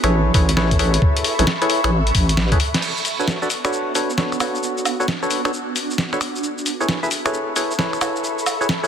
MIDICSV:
0, 0, Header, 1, 5, 480
1, 0, Start_track
1, 0, Tempo, 451128
1, 1085, Time_signature, 4, 2, 24, 8
1, 9441, End_track
2, 0, Start_track
2, 0, Title_t, "Ambient pad"
2, 0, Program_c, 0, 92
2, 0, Note_on_c, 0, 59, 83
2, 0, Note_on_c, 0, 66, 79
2, 0, Note_on_c, 0, 69, 78
2, 0, Note_on_c, 0, 76, 87
2, 0, Note_on_c, 0, 83, 84
2, 0, Note_on_c, 0, 85, 80
2, 267, Note_off_c, 0, 66, 0
2, 571, Note_off_c, 0, 59, 0
2, 3008, Note_on_c, 0, 59, 67
2, 3348, Note_on_c, 0, 66, 87
2, 3644, Note_on_c, 0, 62, 74
2, 3705, Note_off_c, 0, 76, 0
2, 4267, Note_off_c, 0, 83, 0
2, 4445, Note_off_c, 0, 69, 0
2, 4446, Note_off_c, 0, 85, 0
2, 6606, Note_off_c, 0, 62, 0
2, 6607, Note_on_c, 0, 69, 79
2, 6744, Note_on_c, 0, 76, 89
2, 7003, Note_on_c, 0, 83, 71
2, 7280, Note_off_c, 0, 59, 0
2, 7291, Note_off_c, 0, 66, 0
2, 7600, Note_on_c, 0, 85, 68
2, 9441, Note_off_c, 0, 69, 0
2, 9441, Note_off_c, 0, 76, 0
2, 9441, Note_off_c, 0, 83, 0
2, 9441, Note_off_c, 0, 85, 0
2, 9441, End_track
3, 0, Start_track
3, 0, Title_t, "Synth stab"
3, 0, Program_c, 1, 62
3, 40, Note_on_c, 1, 64, 92
3, 40, Note_on_c, 1, 68, 81
3, 40, Note_on_c, 1, 69, 83
3, 40, Note_on_c, 1, 71, 84
3, 40, Note_on_c, 1, 73, 102
3, 344, Note_off_c, 1, 64, 0
3, 344, Note_off_c, 1, 68, 0
3, 344, Note_off_c, 1, 69, 0
3, 344, Note_off_c, 1, 71, 0
3, 344, Note_off_c, 1, 73, 0
3, 364, Note_on_c, 1, 68, 72
3, 364, Note_on_c, 1, 73, 90
3, 365, Note_on_c, 1, 64, 79
3, 365, Note_on_c, 1, 69, 70
3, 365, Note_on_c, 1, 71, 75
3, 548, Note_off_c, 1, 64, 0
3, 548, Note_off_c, 1, 68, 0
3, 548, Note_off_c, 1, 69, 0
3, 548, Note_off_c, 1, 71, 0
3, 548, Note_off_c, 1, 73, 0
3, 604, Note_on_c, 1, 64, 94
3, 604, Note_on_c, 1, 68, 88
3, 604, Note_on_c, 1, 69, 88
3, 604, Note_on_c, 1, 71, 89
3, 605, Note_on_c, 1, 73, 110
3, 824, Note_off_c, 1, 64, 0
3, 824, Note_off_c, 1, 68, 0
3, 824, Note_off_c, 1, 69, 0
3, 824, Note_off_c, 1, 71, 0
3, 824, Note_off_c, 1, 73, 0
3, 843, Note_on_c, 1, 64, 76
3, 843, Note_on_c, 1, 68, 72
3, 843, Note_on_c, 1, 69, 72
3, 843, Note_on_c, 1, 71, 72
3, 843, Note_on_c, 1, 73, 89
3, 1442, Note_off_c, 1, 64, 0
3, 1442, Note_off_c, 1, 68, 0
3, 1442, Note_off_c, 1, 69, 0
3, 1442, Note_off_c, 1, 71, 0
3, 1442, Note_off_c, 1, 73, 0
3, 1477, Note_on_c, 1, 64, 83
3, 1477, Note_on_c, 1, 69, 73
3, 1477, Note_on_c, 1, 73, 89
3, 1478, Note_on_c, 1, 68, 75
3, 1478, Note_on_c, 1, 71, 74
3, 1549, Note_off_c, 1, 64, 0
3, 1549, Note_off_c, 1, 68, 0
3, 1549, Note_off_c, 1, 69, 0
3, 1549, Note_off_c, 1, 73, 0
3, 1550, Note_off_c, 1, 71, 0
3, 1719, Note_on_c, 1, 64, 89
3, 1719, Note_on_c, 1, 68, 79
3, 1719, Note_on_c, 1, 69, 80
3, 1719, Note_on_c, 1, 71, 83
3, 1719, Note_on_c, 1, 73, 99
3, 1922, Note_off_c, 1, 64, 0
3, 1922, Note_off_c, 1, 68, 0
3, 1922, Note_off_c, 1, 69, 0
3, 1922, Note_off_c, 1, 71, 0
3, 1922, Note_off_c, 1, 73, 0
3, 1957, Note_on_c, 1, 68, 93
3, 1957, Note_on_c, 1, 71, 94
3, 1958, Note_on_c, 1, 64, 101
3, 1958, Note_on_c, 1, 69, 88
3, 1958, Note_on_c, 1, 73, 108
3, 2029, Note_off_c, 1, 68, 0
3, 2029, Note_off_c, 1, 71, 0
3, 2030, Note_off_c, 1, 64, 0
3, 2030, Note_off_c, 1, 69, 0
3, 2030, Note_off_c, 1, 73, 0
3, 2679, Note_on_c, 1, 69, 87
3, 2680, Note_on_c, 1, 64, 92
3, 2680, Note_on_c, 1, 68, 86
3, 2680, Note_on_c, 1, 71, 89
3, 2680, Note_on_c, 1, 73, 105
3, 2750, Note_off_c, 1, 69, 0
3, 2750, Note_off_c, 1, 71, 0
3, 2751, Note_off_c, 1, 64, 0
3, 2751, Note_off_c, 1, 68, 0
3, 2751, Note_off_c, 1, 73, 0
3, 3399, Note_on_c, 1, 69, 69
3, 3399, Note_on_c, 1, 73, 82
3, 3400, Note_on_c, 1, 62, 75
3, 3400, Note_on_c, 1, 66, 70
3, 3400, Note_on_c, 1, 71, 68
3, 3602, Note_off_c, 1, 62, 0
3, 3602, Note_off_c, 1, 66, 0
3, 3602, Note_off_c, 1, 69, 0
3, 3602, Note_off_c, 1, 73, 0
3, 3603, Note_off_c, 1, 71, 0
3, 3639, Note_on_c, 1, 62, 89
3, 3639, Note_on_c, 1, 66, 83
3, 3639, Note_on_c, 1, 69, 78
3, 3639, Note_on_c, 1, 71, 81
3, 3639, Note_on_c, 1, 74, 98
3, 3710, Note_off_c, 1, 62, 0
3, 3710, Note_off_c, 1, 66, 0
3, 3710, Note_off_c, 1, 69, 0
3, 3710, Note_off_c, 1, 71, 0
3, 3710, Note_off_c, 1, 74, 0
3, 3878, Note_on_c, 1, 66, 80
3, 3878, Note_on_c, 1, 69, 79
3, 3878, Note_on_c, 1, 71, 81
3, 3878, Note_on_c, 1, 73, 94
3, 3879, Note_on_c, 1, 62, 85
3, 4184, Note_off_c, 1, 62, 0
3, 4184, Note_off_c, 1, 66, 0
3, 4184, Note_off_c, 1, 69, 0
3, 4184, Note_off_c, 1, 71, 0
3, 4184, Note_off_c, 1, 73, 0
3, 4204, Note_on_c, 1, 66, 69
3, 4204, Note_on_c, 1, 71, 67
3, 4204, Note_on_c, 1, 73, 87
3, 4205, Note_on_c, 1, 62, 77
3, 4205, Note_on_c, 1, 69, 68
3, 4387, Note_off_c, 1, 66, 0
3, 4387, Note_off_c, 1, 73, 0
3, 4388, Note_off_c, 1, 62, 0
3, 4388, Note_off_c, 1, 69, 0
3, 4388, Note_off_c, 1, 71, 0
3, 4443, Note_on_c, 1, 62, 94
3, 4443, Note_on_c, 1, 66, 85
3, 4443, Note_on_c, 1, 69, 88
3, 4443, Note_on_c, 1, 71, 86
3, 4443, Note_on_c, 1, 73, 99
3, 4663, Note_off_c, 1, 62, 0
3, 4663, Note_off_c, 1, 69, 0
3, 4664, Note_off_c, 1, 66, 0
3, 4664, Note_off_c, 1, 71, 0
3, 4664, Note_off_c, 1, 73, 0
3, 4684, Note_on_c, 1, 66, 69
3, 4684, Note_on_c, 1, 69, 68
3, 4684, Note_on_c, 1, 71, 67
3, 4684, Note_on_c, 1, 73, 82
3, 4685, Note_on_c, 1, 62, 75
3, 5282, Note_off_c, 1, 66, 0
3, 5282, Note_off_c, 1, 69, 0
3, 5282, Note_off_c, 1, 71, 0
3, 5282, Note_off_c, 1, 73, 0
3, 5283, Note_off_c, 1, 62, 0
3, 5318, Note_on_c, 1, 66, 73
3, 5319, Note_on_c, 1, 62, 79
3, 5319, Note_on_c, 1, 69, 74
3, 5319, Note_on_c, 1, 71, 74
3, 5319, Note_on_c, 1, 73, 84
3, 5390, Note_off_c, 1, 62, 0
3, 5390, Note_off_c, 1, 66, 0
3, 5390, Note_off_c, 1, 69, 0
3, 5390, Note_off_c, 1, 71, 0
3, 5390, Note_off_c, 1, 73, 0
3, 5558, Note_on_c, 1, 71, 76
3, 5559, Note_on_c, 1, 62, 85
3, 5559, Note_on_c, 1, 66, 76
3, 5559, Note_on_c, 1, 69, 77
3, 5559, Note_on_c, 1, 73, 93
3, 5762, Note_off_c, 1, 62, 0
3, 5762, Note_off_c, 1, 66, 0
3, 5762, Note_off_c, 1, 69, 0
3, 5762, Note_off_c, 1, 71, 0
3, 5762, Note_off_c, 1, 73, 0
3, 5798, Note_on_c, 1, 66, 87
3, 5799, Note_on_c, 1, 62, 96
3, 5799, Note_on_c, 1, 69, 87
3, 5799, Note_on_c, 1, 71, 87
3, 5799, Note_on_c, 1, 73, 107
3, 5870, Note_off_c, 1, 62, 0
3, 5870, Note_off_c, 1, 66, 0
3, 5870, Note_off_c, 1, 69, 0
3, 5870, Note_off_c, 1, 71, 0
3, 5870, Note_off_c, 1, 73, 0
3, 6519, Note_on_c, 1, 62, 90
3, 6519, Note_on_c, 1, 66, 82
3, 6519, Note_on_c, 1, 69, 84
3, 6519, Note_on_c, 1, 71, 83
3, 6519, Note_on_c, 1, 73, 101
3, 6590, Note_off_c, 1, 62, 0
3, 6590, Note_off_c, 1, 66, 0
3, 6590, Note_off_c, 1, 69, 0
3, 6590, Note_off_c, 1, 71, 0
3, 6590, Note_off_c, 1, 73, 0
3, 7239, Note_on_c, 1, 73, 81
3, 7240, Note_on_c, 1, 64, 75
3, 7240, Note_on_c, 1, 68, 69
3, 7240, Note_on_c, 1, 69, 69
3, 7240, Note_on_c, 1, 71, 67
3, 7442, Note_off_c, 1, 64, 0
3, 7442, Note_off_c, 1, 73, 0
3, 7443, Note_off_c, 1, 68, 0
3, 7443, Note_off_c, 1, 69, 0
3, 7443, Note_off_c, 1, 71, 0
3, 7478, Note_on_c, 1, 68, 79
3, 7479, Note_on_c, 1, 64, 85
3, 7479, Note_on_c, 1, 69, 83
3, 7479, Note_on_c, 1, 71, 80
3, 7479, Note_on_c, 1, 76, 97
3, 7550, Note_off_c, 1, 64, 0
3, 7550, Note_off_c, 1, 68, 0
3, 7550, Note_off_c, 1, 69, 0
3, 7550, Note_off_c, 1, 71, 0
3, 7550, Note_off_c, 1, 76, 0
3, 7718, Note_on_c, 1, 68, 78
3, 7718, Note_on_c, 1, 69, 80
3, 7718, Note_on_c, 1, 73, 94
3, 7719, Note_on_c, 1, 64, 87
3, 7719, Note_on_c, 1, 71, 80
3, 8024, Note_off_c, 1, 64, 0
3, 8024, Note_off_c, 1, 68, 0
3, 8024, Note_off_c, 1, 69, 0
3, 8024, Note_off_c, 1, 71, 0
3, 8024, Note_off_c, 1, 73, 0
3, 8045, Note_on_c, 1, 64, 77
3, 8045, Note_on_c, 1, 68, 69
3, 8045, Note_on_c, 1, 69, 72
3, 8045, Note_on_c, 1, 71, 72
3, 8045, Note_on_c, 1, 73, 82
3, 8228, Note_off_c, 1, 64, 0
3, 8228, Note_off_c, 1, 68, 0
3, 8228, Note_off_c, 1, 69, 0
3, 8228, Note_off_c, 1, 71, 0
3, 8228, Note_off_c, 1, 73, 0
3, 8284, Note_on_c, 1, 69, 84
3, 8284, Note_on_c, 1, 71, 86
3, 8285, Note_on_c, 1, 64, 95
3, 8285, Note_on_c, 1, 68, 82
3, 8285, Note_on_c, 1, 73, 103
3, 8504, Note_off_c, 1, 64, 0
3, 8504, Note_off_c, 1, 68, 0
3, 8504, Note_off_c, 1, 69, 0
3, 8504, Note_off_c, 1, 71, 0
3, 8505, Note_off_c, 1, 73, 0
3, 8525, Note_on_c, 1, 64, 77
3, 8525, Note_on_c, 1, 68, 69
3, 8525, Note_on_c, 1, 69, 66
3, 8525, Note_on_c, 1, 71, 70
3, 8525, Note_on_c, 1, 73, 84
3, 9123, Note_off_c, 1, 64, 0
3, 9123, Note_off_c, 1, 68, 0
3, 9123, Note_off_c, 1, 69, 0
3, 9123, Note_off_c, 1, 71, 0
3, 9123, Note_off_c, 1, 73, 0
3, 9158, Note_on_c, 1, 64, 79
3, 9158, Note_on_c, 1, 68, 73
3, 9158, Note_on_c, 1, 71, 72
3, 9158, Note_on_c, 1, 73, 87
3, 9159, Note_on_c, 1, 69, 73
3, 9230, Note_off_c, 1, 64, 0
3, 9230, Note_off_c, 1, 68, 0
3, 9230, Note_off_c, 1, 69, 0
3, 9230, Note_off_c, 1, 71, 0
3, 9230, Note_off_c, 1, 73, 0
3, 9398, Note_on_c, 1, 64, 81
3, 9398, Note_on_c, 1, 69, 78
3, 9398, Note_on_c, 1, 71, 78
3, 9398, Note_on_c, 1, 73, 92
3, 9399, Note_on_c, 1, 68, 76
3, 9441, Note_off_c, 1, 64, 0
3, 9441, Note_off_c, 1, 68, 0
3, 9441, Note_off_c, 1, 69, 0
3, 9441, Note_off_c, 1, 71, 0
3, 9441, Note_off_c, 1, 73, 0
3, 9441, End_track
4, 0, Start_track
4, 0, Title_t, "Wobble bass"
4, 0, Program_c, 2, 39
4, 40, Note_on_c, 2, 33, 96
4, 331, Note_off_c, 2, 33, 0
4, 364, Note_on_c, 2, 33, 80
4, 1050, Note_off_c, 2, 33, 0
4, 1480, Note_on_c, 2, 33, 90
4, 1544, Note_off_c, 2, 33, 0
4, 1961, Note_on_c, 2, 33, 92
4, 2251, Note_off_c, 2, 33, 0
4, 2285, Note_on_c, 2, 33, 96
4, 2679, Note_on_c, 2, 37, 90
4, 2695, Note_off_c, 2, 33, 0
4, 2743, Note_off_c, 2, 37, 0
4, 9441, End_track
5, 0, Start_track
5, 0, Title_t, "Drums"
5, 39, Note_on_c, 9, 26, 64
5, 39, Note_on_c, 9, 42, 71
5, 145, Note_off_c, 9, 26, 0
5, 145, Note_off_c, 9, 42, 0
5, 364, Note_on_c, 9, 36, 96
5, 365, Note_on_c, 9, 46, 113
5, 471, Note_off_c, 9, 36, 0
5, 471, Note_off_c, 9, 46, 0
5, 520, Note_on_c, 9, 42, 69
5, 605, Note_on_c, 9, 38, 110
5, 626, Note_off_c, 9, 42, 0
5, 711, Note_off_c, 9, 38, 0
5, 759, Note_on_c, 9, 36, 59
5, 759, Note_on_c, 9, 42, 54
5, 844, Note_on_c, 9, 46, 109
5, 865, Note_off_c, 9, 42, 0
5, 866, Note_off_c, 9, 36, 0
5, 950, Note_off_c, 9, 46, 0
5, 999, Note_on_c, 9, 42, 68
5, 1084, Note_on_c, 9, 36, 110
5, 1105, Note_off_c, 9, 42, 0
5, 1191, Note_off_c, 9, 36, 0
5, 1240, Note_on_c, 9, 42, 54
5, 1324, Note_on_c, 9, 46, 108
5, 1346, Note_off_c, 9, 42, 0
5, 1431, Note_off_c, 9, 46, 0
5, 1481, Note_on_c, 9, 42, 67
5, 1564, Note_on_c, 9, 38, 113
5, 1587, Note_off_c, 9, 42, 0
5, 1671, Note_off_c, 9, 38, 0
5, 1720, Note_on_c, 9, 42, 39
5, 1805, Note_on_c, 9, 46, 109
5, 1826, Note_off_c, 9, 42, 0
5, 1911, Note_off_c, 9, 46, 0
5, 1960, Note_on_c, 9, 26, 71
5, 1960, Note_on_c, 9, 42, 71
5, 2066, Note_off_c, 9, 26, 0
5, 2066, Note_off_c, 9, 42, 0
5, 2200, Note_on_c, 9, 42, 38
5, 2284, Note_on_c, 9, 46, 121
5, 2285, Note_on_c, 9, 36, 58
5, 2307, Note_off_c, 9, 42, 0
5, 2390, Note_off_c, 9, 46, 0
5, 2391, Note_off_c, 9, 36, 0
5, 2440, Note_on_c, 9, 42, 66
5, 2524, Note_on_c, 9, 38, 110
5, 2546, Note_off_c, 9, 42, 0
5, 2631, Note_off_c, 9, 38, 0
5, 2679, Note_on_c, 9, 36, 99
5, 2680, Note_on_c, 9, 42, 53
5, 2764, Note_on_c, 9, 46, 112
5, 2786, Note_off_c, 9, 36, 0
5, 2786, Note_off_c, 9, 42, 0
5, 2871, Note_off_c, 9, 46, 0
5, 2920, Note_on_c, 9, 38, 79
5, 2920, Note_on_c, 9, 42, 69
5, 3004, Note_on_c, 9, 49, 76
5, 3004, Note_on_c, 9, 69, 37
5, 3026, Note_off_c, 9, 38, 0
5, 3026, Note_off_c, 9, 42, 0
5, 3111, Note_off_c, 9, 49, 0
5, 3111, Note_off_c, 9, 69, 0
5, 3160, Note_on_c, 9, 69, 26
5, 3244, Note_off_c, 9, 69, 0
5, 3244, Note_on_c, 9, 46, 95
5, 3244, Note_on_c, 9, 69, 64
5, 3351, Note_off_c, 9, 46, 0
5, 3351, Note_off_c, 9, 69, 0
5, 3399, Note_on_c, 9, 69, 27
5, 3485, Note_off_c, 9, 69, 0
5, 3485, Note_on_c, 9, 38, 111
5, 3485, Note_on_c, 9, 69, 38
5, 3592, Note_off_c, 9, 38, 0
5, 3592, Note_off_c, 9, 69, 0
5, 3641, Note_on_c, 9, 69, 27
5, 3725, Note_off_c, 9, 69, 0
5, 3725, Note_on_c, 9, 46, 104
5, 3725, Note_on_c, 9, 69, 66
5, 3831, Note_off_c, 9, 46, 0
5, 3831, Note_off_c, 9, 69, 0
5, 3880, Note_on_c, 9, 26, 67
5, 3880, Note_on_c, 9, 69, 28
5, 3966, Note_off_c, 9, 69, 0
5, 3966, Note_on_c, 9, 69, 36
5, 3986, Note_off_c, 9, 26, 0
5, 4072, Note_off_c, 9, 69, 0
5, 4206, Note_on_c, 9, 46, 109
5, 4206, Note_on_c, 9, 69, 70
5, 4312, Note_off_c, 9, 46, 0
5, 4312, Note_off_c, 9, 69, 0
5, 4360, Note_on_c, 9, 69, 29
5, 4445, Note_off_c, 9, 69, 0
5, 4445, Note_on_c, 9, 38, 112
5, 4445, Note_on_c, 9, 69, 38
5, 4551, Note_off_c, 9, 38, 0
5, 4551, Note_off_c, 9, 69, 0
5, 4600, Note_on_c, 9, 26, 31
5, 4600, Note_on_c, 9, 69, 27
5, 4685, Note_off_c, 9, 26, 0
5, 4685, Note_off_c, 9, 69, 0
5, 4685, Note_on_c, 9, 26, 50
5, 4685, Note_on_c, 9, 46, 101
5, 4685, Note_on_c, 9, 69, 65
5, 4685, Note_on_c, 9, 76, 71
5, 4791, Note_off_c, 9, 26, 0
5, 4791, Note_off_c, 9, 46, 0
5, 4791, Note_off_c, 9, 69, 0
5, 4791, Note_off_c, 9, 76, 0
5, 4840, Note_on_c, 9, 69, 27
5, 4925, Note_off_c, 9, 69, 0
5, 4925, Note_on_c, 9, 69, 39
5, 5031, Note_off_c, 9, 69, 0
5, 5080, Note_on_c, 9, 69, 26
5, 5165, Note_off_c, 9, 69, 0
5, 5165, Note_on_c, 9, 46, 97
5, 5165, Note_on_c, 9, 69, 64
5, 5165, Note_on_c, 9, 76, 53
5, 5272, Note_off_c, 9, 46, 0
5, 5272, Note_off_c, 9, 69, 0
5, 5272, Note_off_c, 9, 76, 0
5, 5321, Note_on_c, 9, 69, 26
5, 5406, Note_off_c, 9, 69, 0
5, 5406, Note_on_c, 9, 38, 117
5, 5406, Note_on_c, 9, 69, 38
5, 5512, Note_off_c, 9, 38, 0
5, 5512, Note_off_c, 9, 69, 0
5, 5560, Note_on_c, 9, 69, 26
5, 5645, Note_off_c, 9, 69, 0
5, 5645, Note_on_c, 9, 46, 99
5, 5645, Note_on_c, 9, 69, 65
5, 5752, Note_off_c, 9, 46, 0
5, 5752, Note_off_c, 9, 69, 0
5, 5800, Note_on_c, 9, 26, 67
5, 5800, Note_on_c, 9, 69, 29
5, 5886, Note_off_c, 9, 69, 0
5, 5886, Note_on_c, 9, 69, 37
5, 5906, Note_off_c, 9, 26, 0
5, 5992, Note_off_c, 9, 69, 0
5, 6126, Note_on_c, 9, 46, 105
5, 6126, Note_on_c, 9, 69, 69
5, 6233, Note_off_c, 9, 46, 0
5, 6233, Note_off_c, 9, 69, 0
5, 6281, Note_on_c, 9, 69, 28
5, 6365, Note_off_c, 9, 69, 0
5, 6365, Note_on_c, 9, 38, 112
5, 6365, Note_on_c, 9, 69, 38
5, 6471, Note_off_c, 9, 38, 0
5, 6471, Note_off_c, 9, 69, 0
5, 6520, Note_on_c, 9, 26, 31
5, 6520, Note_on_c, 9, 69, 26
5, 6606, Note_off_c, 9, 26, 0
5, 6606, Note_off_c, 9, 69, 0
5, 6606, Note_on_c, 9, 26, 51
5, 6606, Note_on_c, 9, 46, 101
5, 6606, Note_on_c, 9, 69, 68
5, 6713, Note_off_c, 9, 26, 0
5, 6713, Note_off_c, 9, 46, 0
5, 6713, Note_off_c, 9, 69, 0
5, 6760, Note_on_c, 9, 69, 28
5, 6845, Note_off_c, 9, 69, 0
5, 6845, Note_on_c, 9, 69, 39
5, 6952, Note_off_c, 9, 69, 0
5, 7001, Note_on_c, 9, 69, 27
5, 7086, Note_off_c, 9, 69, 0
5, 7086, Note_on_c, 9, 46, 93
5, 7086, Note_on_c, 9, 69, 66
5, 7193, Note_off_c, 9, 46, 0
5, 7193, Note_off_c, 9, 69, 0
5, 7241, Note_on_c, 9, 69, 29
5, 7326, Note_off_c, 9, 69, 0
5, 7326, Note_on_c, 9, 38, 115
5, 7326, Note_on_c, 9, 69, 39
5, 7432, Note_off_c, 9, 38, 0
5, 7432, Note_off_c, 9, 69, 0
5, 7481, Note_on_c, 9, 69, 26
5, 7565, Note_off_c, 9, 69, 0
5, 7565, Note_on_c, 9, 46, 99
5, 7565, Note_on_c, 9, 69, 67
5, 7672, Note_off_c, 9, 46, 0
5, 7672, Note_off_c, 9, 69, 0
5, 7721, Note_on_c, 9, 26, 66
5, 7721, Note_on_c, 9, 69, 29
5, 7806, Note_off_c, 9, 69, 0
5, 7806, Note_on_c, 9, 69, 37
5, 7827, Note_off_c, 9, 26, 0
5, 7912, Note_off_c, 9, 69, 0
5, 8045, Note_on_c, 9, 46, 102
5, 8045, Note_on_c, 9, 69, 73
5, 8152, Note_off_c, 9, 46, 0
5, 8152, Note_off_c, 9, 69, 0
5, 8201, Note_on_c, 9, 69, 28
5, 8285, Note_off_c, 9, 69, 0
5, 8285, Note_on_c, 9, 38, 116
5, 8285, Note_on_c, 9, 69, 40
5, 8392, Note_off_c, 9, 38, 0
5, 8392, Note_off_c, 9, 69, 0
5, 8440, Note_on_c, 9, 26, 30
5, 8440, Note_on_c, 9, 69, 28
5, 8525, Note_off_c, 9, 26, 0
5, 8525, Note_off_c, 9, 69, 0
5, 8525, Note_on_c, 9, 26, 51
5, 8525, Note_on_c, 9, 46, 97
5, 8525, Note_on_c, 9, 69, 68
5, 8525, Note_on_c, 9, 76, 74
5, 8632, Note_off_c, 9, 26, 0
5, 8632, Note_off_c, 9, 46, 0
5, 8632, Note_off_c, 9, 69, 0
5, 8632, Note_off_c, 9, 76, 0
5, 8681, Note_on_c, 9, 69, 28
5, 8765, Note_off_c, 9, 69, 0
5, 8765, Note_on_c, 9, 69, 39
5, 8872, Note_off_c, 9, 69, 0
5, 8920, Note_on_c, 9, 69, 28
5, 9006, Note_off_c, 9, 69, 0
5, 9006, Note_on_c, 9, 46, 90
5, 9006, Note_on_c, 9, 69, 67
5, 9006, Note_on_c, 9, 76, 58
5, 9112, Note_off_c, 9, 46, 0
5, 9112, Note_off_c, 9, 69, 0
5, 9112, Note_off_c, 9, 76, 0
5, 9161, Note_on_c, 9, 69, 28
5, 9247, Note_off_c, 9, 69, 0
5, 9247, Note_on_c, 9, 38, 110
5, 9247, Note_on_c, 9, 69, 39
5, 9353, Note_off_c, 9, 38, 0
5, 9353, Note_off_c, 9, 69, 0
5, 9402, Note_on_c, 9, 69, 28
5, 9441, Note_off_c, 9, 69, 0
5, 9441, End_track
0, 0, End_of_file